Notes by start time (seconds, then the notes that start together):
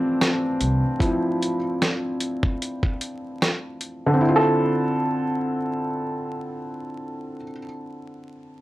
Already playing: E3 F3 C4 D4 E4
0.21 snare, closed hi-hat
0.61 C2, closed hi-hat
0.99 F3 C4 E4, kick, closed hi-hat
1.42 closed hi-hat
1.82 snare, closed hi-hat
2.21 closed hi-hat
2.43 kick
2.62 closed hi-hat
2.83 kick
3.01 closed hi-hat
3.42 snare, closed hi-hat
3.81 closed hi-hat
4.06 D3
4.14 C4
4.21 E4
4.29 F4
4.36 A4